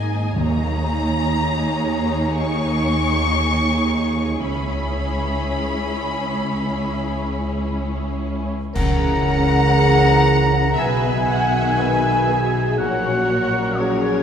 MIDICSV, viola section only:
0, 0, Header, 1, 2, 480
1, 0, Start_track
1, 0, Tempo, 998336
1, 174, Time_signature, 4, 2, 24, 8
1, 1615, Tempo, 1079137
1, 4015, Tempo, 1006711
1, 6625, End_track
2, 0, Start_track
2, 0, Title_t, "Viola section"
2, 0, Program_c, 0, 48
2, 0, Note_on_c, 0, 58, 56
2, 0, Note_on_c, 0, 63, 53
2, 152, Note_off_c, 0, 58, 0
2, 152, Note_off_c, 0, 63, 0
2, 168, Note_on_c, 0, 63, 68
2, 170, Note_on_c, 0, 58, 73
2, 2067, Note_off_c, 0, 63, 0
2, 2068, Note_off_c, 0, 58, 0
2, 2089, Note_on_c, 0, 61, 58
2, 2089, Note_on_c, 0, 64, 55
2, 3904, Note_off_c, 0, 61, 0
2, 3904, Note_off_c, 0, 64, 0
2, 4981, Note_on_c, 0, 71, 85
2, 5205, Note_off_c, 0, 71, 0
2, 5225, Note_on_c, 0, 78, 78
2, 5463, Note_on_c, 0, 71, 74
2, 5464, Note_off_c, 0, 78, 0
2, 5701, Note_off_c, 0, 71, 0
2, 5703, Note_on_c, 0, 68, 75
2, 5935, Note_on_c, 0, 70, 63
2, 5941, Note_off_c, 0, 68, 0
2, 6413, Note_off_c, 0, 70, 0
2, 6417, Note_on_c, 0, 68, 75
2, 6625, Note_off_c, 0, 68, 0
2, 6625, End_track
0, 0, End_of_file